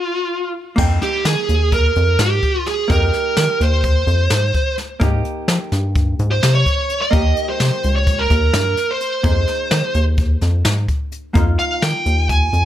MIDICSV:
0, 0, Header, 1, 5, 480
1, 0, Start_track
1, 0, Key_signature, -4, "minor"
1, 0, Tempo, 470219
1, 798, Time_signature, 9, 3, 24, 8
1, 12913, End_track
2, 0, Start_track
2, 0, Title_t, "Lead electric guitar"
2, 0, Program_c, 0, 29
2, 0, Note_on_c, 0, 65, 67
2, 532, Note_off_c, 0, 65, 0
2, 1050, Note_on_c, 0, 67, 64
2, 1268, Note_off_c, 0, 67, 0
2, 1289, Note_on_c, 0, 68, 71
2, 1769, Note_off_c, 0, 68, 0
2, 1773, Note_on_c, 0, 70, 72
2, 2253, Note_off_c, 0, 70, 0
2, 2257, Note_on_c, 0, 67, 85
2, 2729, Note_off_c, 0, 67, 0
2, 2733, Note_on_c, 0, 68, 81
2, 2950, Note_off_c, 0, 68, 0
2, 2972, Note_on_c, 0, 70, 91
2, 3697, Note_on_c, 0, 72, 89
2, 3707, Note_off_c, 0, 70, 0
2, 4848, Note_off_c, 0, 72, 0
2, 6446, Note_on_c, 0, 72, 70
2, 6680, Note_off_c, 0, 72, 0
2, 6684, Note_on_c, 0, 73, 96
2, 7157, Note_off_c, 0, 73, 0
2, 7161, Note_on_c, 0, 75, 91
2, 7646, Note_off_c, 0, 75, 0
2, 7650, Note_on_c, 0, 72, 76
2, 8121, Note_off_c, 0, 72, 0
2, 8125, Note_on_c, 0, 73, 83
2, 8363, Note_on_c, 0, 70, 85
2, 8369, Note_off_c, 0, 73, 0
2, 9093, Note_on_c, 0, 72, 61
2, 9102, Note_off_c, 0, 70, 0
2, 10244, Note_off_c, 0, 72, 0
2, 11830, Note_on_c, 0, 77, 77
2, 12068, Note_on_c, 0, 79, 102
2, 12080, Note_off_c, 0, 77, 0
2, 12518, Note_off_c, 0, 79, 0
2, 12552, Note_on_c, 0, 80, 98
2, 12913, Note_off_c, 0, 80, 0
2, 12913, End_track
3, 0, Start_track
3, 0, Title_t, "Hollow-body jazz guitar"
3, 0, Program_c, 1, 26
3, 773, Note_on_c, 1, 58, 75
3, 792, Note_on_c, 1, 63, 63
3, 806, Note_on_c, 1, 79, 77
3, 2906, Note_off_c, 1, 58, 0
3, 2916, Note_off_c, 1, 63, 0
3, 2923, Note_off_c, 1, 79, 0
3, 2939, Note_on_c, 1, 58, 55
3, 2956, Note_on_c, 1, 63, 51
3, 2971, Note_on_c, 1, 67, 65
3, 5069, Note_off_c, 1, 58, 0
3, 5077, Note_off_c, 1, 63, 0
3, 5085, Note_off_c, 1, 67, 0
3, 5101, Note_on_c, 1, 58, 74
3, 5118, Note_on_c, 1, 63, 65
3, 5132, Note_on_c, 1, 67, 78
3, 7229, Note_off_c, 1, 58, 0
3, 7238, Note_off_c, 1, 63, 0
3, 7245, Note_off_c, 1, 67, 0
3, 7255, Note_on_c, 1, 58, 65
3, 7270, Note_on_c, 1, 63, 52
3, 7285, Note_on_c, 1, 67, 61
3, 9386, Note_off_c, 1, 58, 0
3, 9393, Note_off_c, 1, 63, 0
3, 9401, Note_off_c, 1, 67, 0
3, 9426, Note_on_c, 1, 58, 57
3, 9436, Note_on_c, 1, 63, 54
3, 9451, Note_on_c, 1, 68, 66
3, 11550, Note_off_c, 1, 58, 0
3, 11555, Note_off_c, 1, 63, 0
3, 11562, Note_off_c, 1, 68, 0
3, 11575, Note_on_c, 1, 58, 73
3, 11591, Note_on_c, 1, 63, 65
3, 11608, Note_on_c, 1, 65, 84
3, 12913, Note_off_c, 1, 58, 0
3, 12913, Note_off_c, 1, 63, 0
3, 12913, Note_off_c, 1, 65, 0
3, 12913, End_track
4, 0, Start_track
4, 0, Title_t, "Analog synth bass"
4, 0, Program_c, 2, 38
4, 797, Note_on_c, 2, 41, 82
4, 1016, Note_off_c, 2, 41, 0
4, 1276, Note_on_c, 2, 51, 87
4, 1387, Note_off_c, 2, 51, 0
4, 1519, Note_on_c, 2, 39, 77
4, 1959, Note_off_c, 2, 39, 0
4, 2003, Note_on_c, 2, 41, 90
4, 2220, Note_off_c, 2, 41, 0
4, 2235, Note_on_c, 2, 44, 84
4, 2455, Note_off_c, 2, 44, 0
4, 2960, Note_on_c, 2, 41, 95
4, 3179, Note_off_c, 2, 41, 0
4, 3442, Note_on_c, 2, 51, 83
4, 3550, Note_off_c, 2, 51, 0
4, 3678, Note_on_c, 2, 39, 88
4, 4118, Note_off_c, 2, 39, 0
4, 4153, Note_on_c, 2, 41, 87
4, 4375, Note_off_c, 2, 41, 0
4, 4401, Note_on_c, 2, 44, 83
4, 4619, Note_off_c, 2, 44, 0
4, 5120, Note_on_c, 2, 44, 88
4, 5338, Note_off_c, 2, 44, 0
4, 5593, Note_on_c, 2, 53, 88
4, 5705, Note_off_c, 2, 53, 0
4, 5838, Note_on_c, 2, 43, 86
4, 6278, Note_off_c, 2, 43, 0
4, 6323, Note_on_c, 2, 44, 94
4, 6540, Note_off_c, 2, 44, 0
4, 6566, Note_on_c, 2, 48, 82
4, 6782, Note_off_c, 2, 48, 0
4, 7279, Note_on_c, 2, 39, 93
4, 7498, Note_off_c, 2, 39, 0
4, 7761, Note_on_c, 2, 48, 85
4, 7869, Note_off_c, 2, 48, 0
4, 8004, Note_on_c, 2, 37, 75
4, 8441, Note_off_c, 2, 37, 0
4, 8478, Note_on_c, 2, 39, 89
4, 8697, Note_off_c, 2, 39, 0
4, 8717, Note_on_c, 2, 43, 87
4, 8936, Note_off_c, 2, 43, 0
4, 9435, Note_on_c, 2, 41, 84
4, 9655, Note_off_c, 2, 41, 0
4, 9916, Note_on_c, 2, 51, 87
4, 10026, Note_off_c, 2, 51, 0
4, 10153, Note_on_c, 2, 39, 85
4, 10594, Note_off_c, 2, 39, 0
4, 10636, Note_on_c, 2, 41, 89
4, 10855, Note_off_c, 2, 41, 0
4, 10876, Note_on_c, 2, 44, 89
4, 11095, Note_off_c, 2, 44, 0
4, 11591, Note_on_c, 2, 41, 88
4, 11812, Note_off_c, 2, 41, 0
4, 12071, Note_on_c, 2, 51, 90
4, 12183, Note_off_c, 2, 51, 0
4, 12308, Note_on_c, 2, 39, 86
4, 12751, Note_off_c, 2, 39, 0
4, 12789, Note_on_c, 2, 41, 80
4, 12913, Note_off_c, 2, 41, 0
4, 12913, End_track
5, 0, Start_track
5, 0, Title_t, "Drums"
5, 797, Note_on_c, 9, 49, 88
5, 798, Note_on_c, 9, 36, 104
5, 899, Note_off_c, 9, 49, 0
5, 900, Note_off_c, 9, 36, 0
5, 1038, Note_on_c, 9, 38, 29
5, 1038, Note_on_c, 9, 42, 54
5, 1140, Note_off_c, 9, 38, 0
5, 1140, Note_off_c, 9, 42, 0
5, 1277, Note_on_c, 9, 38, 104
5, 1277, Note_on_c, 9, 42, 80
5, 1379, Note_off_c, 9, 38, 0
5, 1379, Note_off_c, 9, 42, 0
5, 1521, Note_on_c, 9, 42, 61
5, 1623, Note_off_c, 9, 42, 0
5, 1758, Note_on_c, 9, 36, 86
5, 1759, Note_on_c, 9, 42, 69
5, 1861, Note_off_c, 9, 36, 0
5, 1861, Note_off_c, 9, 42, 0
5, 1997, Note_on_c, 9, 42, 49
5, 2099, Note_off_c, 9, 42, 0
5, 2235, Note_on_c, 9, 38, 97
5, 2235, Note_on_c, 9, 42, 76
5, 2337, Note_off_c, 9, 38, 0
5, 2337, Note_off_c, 9, 42, 0
5, 2476, Note_on_c, 9, 42, 50
5, 2478, Note_on_c, 9, 36, 62
5, 2578, Note_off_c, 9, 42, 0
5, 2580, Note_off_c, 9, 36, 0
5, 2718, Note_on_c, 9, 38, 33
5, 2718, Note_on_c, 9, 42, 50
5, 2820, Note_off_c, 9, 38, 0
5, 2820, Note_off_c, 9, 42, 0
5, 2958, Note_on_c, 9, 42, 77
5, 2960, Note_on_c, 9, 36, 102
5, 3060, Note_off_c, 9, 42, 0
5, 3062, Note_off_c, 9, 36, 0
5, 3199, Note_on_c, 9, 38, 28
5, 3199, Note_on_c, 9, 42, 54
5, 3301, Note_off_c, 9, 38, 0
5, 3301, Note_off_c, 9, 42, 0
5, 3437, Note_on_c, 9, 38, 100
5, 3437, Note_on_c, 9, 42, 78
5, 3539, Note_off_c, 9, 38, 0
5, 3539, Note_off_c, 9, 42, 0
5, 3682, Note_on_c, 9, 42, 65
5, 3784, Note_off_c, 9, 42, 0
5, 3918, Note_on_c, 9, 42, 73
5, 3919, Note_on_c, 9, 36, 85
5, 4020, Note_off_c, 9, 42, 0
5, 4021, Note_off_c, 9, 36, 0
5, 4158, Note_on_c, 9, 42, 59
5, 4260, Note_off_c, 9, 42, 0
5, 4392, Note_on_c, 9, 38, 92
5, 4392, Note_on_c, 9, 42, 70
5, 4494, Note_off_c, 9, 38, 0
5, 4494, Note_off_c, 9, 42, 0
5, 4636, Note_on_c, 9, 42, 58
5, 4638, Note_on_c, 9, 36, 67
5, 4738, Note_off_c, 9, 42, 0
5, 4740, Note_off_c, 9, 36, 0
5, 4878, Note_on_c, 9, 38, 30
5, 4878, Note_on_c, 9, 42, 56
5, 4980, Note_off_c, 9, 38, 0
5, 4980, Note_off_c, 9, 42, 0
5, 5113, Note_on_c, 9, 42, 80
5, 5117, Note_on_c, 9, 36, 106
5, 5215, Note_off_c, 9, 42, 0
5, 5220, Note_off_c, 9, 36, 0
5, 5357, Note_on_c, 9, 42, 57
5, 5459, Note_off_c, 9, 42, 0
5, 5595, Note_on_c, 9, 38, 97
5, 5595, Note_on_c, 9, 42, 75
5, 5697, Note_off_c, 9, 38, 0
5, 5697, Note_off_c, 9, 42, 0
5, 5838, Note_on_c, 9, 38, 35
5, 5838, Note_on_c, 9, 42, 61
5, 5940, Note_off_c, 9, 38, 0
5, 5940, Note_off_c, 9, 42, 0
5, 6077, Note_on_c, 9, 42, 65
5, 6079, Note_on_c, 9, 36, 97
5, 6179, Note_off_c, 9, 42, 0
5, 6181, Note_off_c, 9, 36, 0
5, 6321, Note_on_c, 9, 42, 53
5, 6423, Note_off_c, 9, 42, 0
5, 6561, Note_on_c, 9, 38, 105
5, 6561, Note_on_c, 9, 42, 67
5, 6663, Note_off_c, 9, 38, 0
5, 6663, Note_off_c, 9, 42, 0
5, 6799, Note_on_c, 9, 36, 59
5, 6802, Note_on_c, 9, 42, 56
5, 6901, Note_off_c, 9, 36, 0
5, 6904, Note_off_c, 9, 42, 0
5, 7040, Note_on_c, 9, 42, 54
5, 7142, Note_off_c, 9, 42, 0
5, 7279, Note_on_c, 9, 36, 108
5, 7281, Note_on_c, 9, 42, 78
5, 7382, Note_off_c, 9, 36, 0
5, 7383, Note_off_c, 9, 42, 0
5, 7519, Note_on_c, 9, 42, 55
5, 7621, Note_off_c, 9, 42, 0
5, 7758, Note_on_c, 9, 38, 100
5, 7758, Note_on_c, 9, 42, 73
5, 7861, Note_off_c, 9, 38, 0
5, 7861, Note_off_c, 9, 42, 0
5, 8000, Note_on_c, 9, 42, 66
5, 8102, Note_off_c, 9, 42, 0
5, 8237, Note_on_c, 9, 36, 100
5, 8239, Note_on_c, 9, 42, 76
5, 8340, Note_off_c, 9, 36, 0
5, 8341, Note_off_c, 9, 42, 0
5, 8474, Note_on_c, 9, 38, 28
5, 8474, Note_on_c, 9, 42, 58
5, 8475, Note_on_c, 9, 36, 66
5, 8577, Note_off_c, 9, 36, 0
5, 8577, Note_off_c, 9, 38, 0
5, 8577, Note_off_c, 9, 42, 0
5, 8712, Note_on_c, 9, 38, 99
5, 8712, Note_on_c, 9, 42, 76
5, 8814, Note_off_c, 9, 38, 0
5, 8814, Note_off_c, 9, 42, 0
5, 8954, Note_on_c, 9, 38, 32
5, 8954, Note_on_c, 9, 42, 65
5, 9056, Note_off_c, 9, 38, 0
5, 9056, Note_off_c, 9, 42, 0
5, 9192, Note_on_c, 9, 42, 63
5, 9294, Note_off_c, 9, 42, 0
5, 9431, Note_on_c, 9, 42, 84
5, 9434, Note_on_c, 9, 36, 111
5, 9533, Note_off_c, 9, 42, 0
5, 9536, Note_off_c, 9, 36, 0
5, 9672, Note_on_c, 9, 38, 31
5, 9672, Note_on_c, 9, 42, 56
5, 9774, Note_off_c, 9, 38, 0
5, 9774, Note_off_c, 9, 42, 0
5, 9911, Note_on_c, 9, 38, 101
5, 9911, Note_on_c, 9, 42, 78
5, 10013, Note_off_c, 9, 38, 0
5, 10013, Note_off_c, 9, 42, 0
5, 10149, Note_on_c, 9, 42, 59
5, 10251, Note_off_c, 9, 42, 0
5, 10386, Note_on_c, 9, 42, 69
5, 10391, Note_on_c, 9, 36, 98
5, 10489, Note_off_c, 9, 42, 0
5, 10493, Note_off_c, 9, 36, 0
5, 10630, Note_on_c, 9, 38, 28
5, 10630, Note_on_c, 9, 42, 55
5, 10732, Note_off_c, 9, 38, 0
5, 10732, Note_off_c, 9, 42, 0
5, 10869, Note_on_c, 9, 38, 108
5, 10869, Note_on_c, 9, 42, 71
5, 10971, Note_off_c, 9, 38, 0
5, 10971, Note_off_c, 9, 42, 0
5, 11110, Note_on_c, 9, 42, 59
5, 11111, Note_on_c, 9, 36, 66
5, 11213, Note_off_c, 9, 36, 0
5, 11213, Note_off_c, 9, 42, 0
5, 11349, Note_on_c, 9, 42, 59
5, 11452, Note_off_c, 9, 42, 0
5, 11589, Note_on_c, 9, 42, 82
5, 11590, Note_on_c, 9, 36, 121
5, 11691, Note_off_c, 9, 42, 0
5, 11692, Note_off_c, 9, 36, 0
5, 11830, Note_on_c, 9, 42, 55
5, 11933, Note_off_c, 9, 42, 0
5, 12070, Note_on_c, 9, 38, 99
5, 12070, Note_on_c, 9, 42, 83
5, 12172, Note_off_c, 9, 38, 0
5, 12172, Note_off_c, 9, 42, 0
5, 12310, Note_on_c, 9, 42, 61
5, 12412, Note_off_c, 9, 42, 0
5, 12550, Note_on_c, 9, 36, 95
5, 12550, Note_on_c, 9, 42, 79
5, 12652, Note_off_c, 9, 36, 0
5, 12652, Note_off_c, 9, 42, 0
5, 12792, Note_on_c, 9, 42, 54
5, 12894, Note_off_c, 9, 42, 0
5, 12913, End_track
0, 0, End_of_file